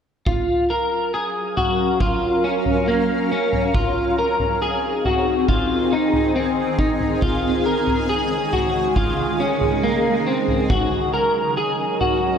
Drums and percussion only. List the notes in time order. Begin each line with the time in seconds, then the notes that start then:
0.26 kick, floor tom
1.57 floor tom
2.00 kick, floor tom
2.66 floor tom
3.53 floor tom
3.75 kick, floor tom
4.40 floor tom
5.05 floor tom
5.49 kick, floor tom
6.13 floor tom
6.79 kick
7.01 floor tom
7.22 kick, floor tom
7.87 floor tom
8.53 floor tom
8.96 kick, floor tom
9.61 floor tom
10.48 floor tom
10.70 kick, floor tom
12.01 floor tom